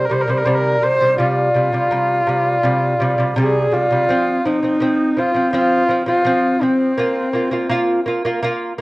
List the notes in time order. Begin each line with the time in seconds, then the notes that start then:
0.05 A#4
0.09 C3 G3 C5
0.21 A#4
0.27 C3 G3 C5
0.38 A#4
0.45 C3 G3 C5
0.55 A#4
0.82 C3 G3 C5
1.00 C3 G3
1.18 C3 G3 F4
1.54 C3 G3
1.73 C3 G3
1.91 C3 G3
2.27 C3 G3
2.63 C3 G3
3.00 C3 G3
3.18 C3 G3
3.36 C3 G3 G#4
3.72 C3 G3 F4
3.91 C3 G3
4.09 F3 C4
4.45 F3 C4 D#4
4.63 F3 C4
4.80 F3 C4
5.17 F3 C4 F4
5.34 F3 C4
5.53 F3 C4 F4
5.89 F3 C4
6.06 F3 C4 F4
6.25 F3 C4
6.61 F3 C4
6.98 A#3 F4
7.33 A#3 F4
7.51 A#3 F4
7.69 A#3 F4
8.06 A#3 F4
8.25 A#3 F4
8.42 A#3 F4